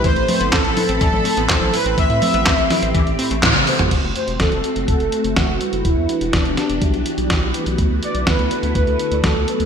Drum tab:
CC |----------------|----------------|x---------------|----------------|
HH |xxoxxxoxx-oxx-ox|xxoxxxoxxxoxx-ox|x-xxxxxxxxxxx-xx|x-xxxxxxxxxxx-xx|
CP |----x-------x---|----x-------x---|----------------|----------------|
SD |----o-------o---|----o-o-----o---|----o-------o---|----o-o-----o---|
T1 |----------------|------------oo--|----------------|----------------|
T2 |----------------|---------------o|----------------|----------------|
CG |--o---o--o---o--|--o---o---------|----------------|----------------|
BD |o---o---o---o---|o---o---o---o---|o---o---o---o---|o---o---o---o---|

CC |----------------|
HH |x-xxxxxxxxxxx-xx|
CP |----------------|
SD |----o-------o---|
T1 |----------------|
T2 |----------------|
CG |----------------|
BD |o---o---o---o---|